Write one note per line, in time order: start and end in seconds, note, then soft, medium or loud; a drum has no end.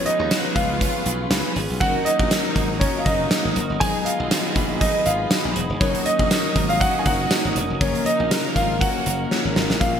0.00 1.81 F3 medium
0.00 1.76 G#3 medium
0.00 1.77 B3 medium
0.00 1.77 C#4 medium
0.00 1.77 F4 medium
0.00 1.77 G#4 medium
0.00 1.77 B4 medium
0.00 1.78 B4 medium
0.00 1.79 B4 medium
0.00 1.79 F5 medium
0.00 1.79 C#6 medium
0.05 0.81 C#4 medium
0.05 0.52 D#4 medium
0.05 0.57 D#5 medium
0.05 closed hi-hat medium
0.19 0.28 D#2 medium
0.31 0.45 F#4 medium
0.31 snare loud
0.31 closed hi-hat loud
0.31 tambourine medium
0.45 1.55 G#4 medium
0.55 0.85 C#2 medium
0.55 1.05 B3 medium
0.55 1.51 F4 loud
0.55 1.52 F5 medium
0.55 kick medium
0.55 closed hi-hat medium
0.81 1.31 C#4 medium
0.81 kick loud
0.81 closed hi-hat medium
1.06 1.25 B1 medium
1.06 1.87 B3 medium
1.06 closed hi-hat medium
1.31 1.41 C#2 medium
1.31 1.87 C#4 medium
1.31 snare loud
1.31 closed hi-hat medium
1.31 tambourine medium
1.56 1.66 G#1 medium
1.56 1.87 G#4 medium
1.56 open hi-hat medium
1.70 1.78 B1 medium
1.80 1.91 F#1 loud
1.80 3.81 D#3 medium
1.80 3.28 F#3 medium
1.80 3.28 A#3 medium
1.80 3.28 C#4 medium
1.80 3.77 D#4 medium
1.80 3.28 D#4 medium
1.80 2.03 F#4 loud
1.80 3.77 F#4 medium
1.80 3.77 A#4 medium
1.80 3.79 A#4 medium
1.80 3.29 A#4 medium
1.80 9.77 D#5 medium
1.80 2.04 F#5 loud
1.80 3.79 D#6 medium
1.80 kick loud
1.80 closed hi-hat medium
2.04 2.80 C#4 medium
2.04 2.76 D#4 medium
2.04 2.76 D#5 medium
2.04 closed hi-hat medium
2.19 2.28 A#1 medium
2.19 kick medium
2.31 3.56 F#4 medium
2.31 snare loud
2.31 closed hi-hat loud
2.31 tambourine medium
2.56 2.85 G#1 medium
2.56 3.05 A#3 medium
2.56 kick medium
2.56 closed hi-hat medium
2.79 2.97 C#4 medium
2.79 3.30 C#4 medium
2.79 3.00 C#5 medium
2.79 kick medium
2.79 closed hi-hat medium
2.98 3.05 F4 medium
2.98 3.06 F5 medium
3.04 3.25 F#1 loud
3.04 3.87 A#3 medium
3.04 3.51 D#4 medium
3.04 3.52 D#5 medium
3.04 kick medium
3.04 closed hi-hat medium
3.30 3.79 F#3 soft
3.30 3.81 A#3 soft
3.30 3.81 C#4 soft
3.30 3.87 C#4 medium
3.30 3.81 D#4 soft
3.30 3.81 A#4 medium
3.30 snare loud
3.30 closed hi-hat medium
3.30 tambourine medium
3.45 3.53 G#1 loud
3.56 3.66 F#1 medium
3.56 4.31 F#4 medium
3.56 closed hi-hat medium
3.70 3.78 G1 medium
3.80 3.91 G#1 loud
3.80 5.81 D#3 medium
3.80 5.76 F#3 medium
3.80 5.77 G#3 medium
3.80 5.77 B3 medium
3.80 5.77 D#4 medium
3.80 4.04 G#4 loud
3.80 5.77 G#4 medium
3.80 5.79 G#4 medium
3.80 5.78 G#4 medium
3.80 4.04 G#5 loud
3.80 5.79 B5 medium
3.80 kick loud
3.80 closed hi-hat medium
4.05 4.81 D#4 medium
4.05 4.76 F4 loud
4.05 4.83 F5 medium
4.05 closed hi-hat medium
4.20 4.28 B1 medium
4.31 5.56 F#4 medium
4.31 snare loud
4.31 closed hi-hat loud
4.31 tambourine medium
4.56 4.85 A#1 loud
4.56 5.05 B3 medium
4.56 kick medium
4.56 closed hi-hat medium
4.80 5.04 D#4 medium
4.80 5.31 D#4 medium
4.80 5.07 D#5 medium
4.80 kick medium
4.80 closed hi-hat medium
5.05 5.25 G#1 medium
5.05 5.87 B3 medium
5.05 5.52 F4 medium
5.05 5.52 F5 medium
5.05 closed hi-hat medium
5.31 5.86 D#4 medium
5.31 snare loud
5.31 closed hi-hat medium
5.31 tambourine medium
5.45 5.53 A#1 medium
5.56 5.66 E1 loud
5.56 6.31 F#4 medium
5.56 closed hi-hat medium
5.70 5.78 F1 medium
5.79 5.91 F#1 loud
5.79 7.81 D#3 medium
5.79 7.76 F#3 medium
5.79 7.77 A#3 medium
5.79 6.03 C#4 medium
5.79 7.77 C#4 medium
5.79 7.77 D#4 medium
5.79 7.77 F#4 medium
5.79 9.77 A#4 medium
5.79 7.78 A#4 medium
5.79 6.06 C#5 medium
5.79 7.79 D#6 medium
5.79 kick loud
5.79 closed hi-hat medium
5.95 closed hi-hat medium
6.05 6.81 C#4 medium
6.05 6.65 D#4 medium
6.05 6.71 D#5 medium
6.05 closed hi-hat medium
6.19 6.28 A#1 medium
6.19 kick medium
6.31 7.56 F#4 medium
6.31 snare loud
6.31 closed hi-hat loud
6.31 tambourine medium
6.56 6.85 G#1 medium
6.56 7.06 A#3 medium
6.56 kick medium
6.56 closed hi-hat medium
6.68 6.79 F4 medium
6.68 6.81 F5 loud
6.68 closed hi-hat medium
6.80 7.31 C#4 medium
6.80 6.98 F#4 loud
6.80 6.98 F#5 loud
6.80 kick medium
6.80 closed hi-hat medium
6.99 7.05 G#4 medium
6.99 7.06 G#5 medium
7.05 7.25 F#1 medium
7.05 8.56 A#3 medium
7.05 7.52 F#4 medium
7.05 7.52 F#5 loud
7.05 kick medium
7.05 closed hi-hat medium
7.31 8.06 C#4 medium
7.31 snare loud
7.31 closed hi-hat medium
7.31 tambourine medium
7.45 7.53 G#1 medium
7.56 7.66 E1 medium
7.56 7.87 F#4 medium
7.56 closed hi-hat medium
7.70 7.78 F1 medium
7.80 7.91 F#1 medium
7.80 9.27 C#3 medium
7.80 9.81 F3 medium
7.80 9.28 A#3 medium
7.80 9.77 A#3 medium
7.80 8.04 C#4 medium
7.80 9.28 C#4 medium
7.80 9.77 C#4 medium
7.80 9.77 A#4 medium
7.80 9.29 A#4 medium
7.80 8.07 C#5 medium
7.80 9.79 F6 medium
7.80 kick loud
7.80 closed hi-hat medium
7.95 closed hi-hat medium
8.05 8.81 C#4 medium
8.05 8.52 D#4 medium
8.05 8.57 D#5 loud
8.05 closed hi-hat medium
8.20 8.28 A#1 medium
8.31 9.56 F4 medium
8.31 snare loud
8.31 closed hi-hat loud
8.31 tambourine medium
8.55 8.85 G#1 loud
8.55 9.06 A#3 medium
8.55 8.79 F4 medium
8.55 8.82 F5 medium
8.55 kick medium
8.55 closed hi-hat medium
8.80 9.31 C#4 medium
8.80 9.27 F#4 medium
8.80 9.27 F#5 medium
8.80 kick loud
8.80 closed hi-hat medium
9.06 9.25 F#1 medium
9.06 10.00 A#3 medium
9.06 closed hi-hat medium
9.31 9.81 F3 soft
9.31 9.81 A#3 soft
9.31 9.79 C#4 soft
9.31 10.00 C#4 medium
9.31 9.80 F4 soft
9.31 9.81 C#5 medium
9.31 snare medium
9.45 9.53 G#1 medium
9.56 9.66 G#1 medium
9.56 10.00 F4 medium
9.56 snare loud
9.70 9.78 A1 medium
9.70 snare medium
9.80 10.00 A#1 medium
9.80 10.00 F3 medium
9.80 10.00 G#3 medium
9.80 10.00 C#4 medium
9.80 10.00 F4 medium
9.80 10.00 A#4 medium
9.80 10.00 F5 loud
9.80 10.00 G#5 medium
9.80 10.00 C#6 medium
9.80 kick loud
9.80 closed hi-hat medium